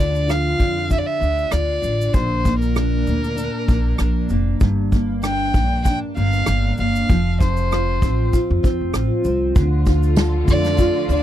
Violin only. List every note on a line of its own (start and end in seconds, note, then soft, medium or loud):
0.00 0.32 D5 medium
0.30 0.91 F5 medium
0.92 1.00 E5 medium
0.98 1.08 D5 medium
1.06 1.54 E5 medium
1.52 2.15 D5 medium
2.13 2.61 C5 medium
2.62 4.27 A#4 medium
5.25 5.82 G5 medium
5.84 5.98 G5 loud
6.17 6.74 F5 medium
6.80 7.37 F5 medium
7.42 8.30 C5 medium
10.50 11.07 D5 medium
11.12 11.23 D5 medium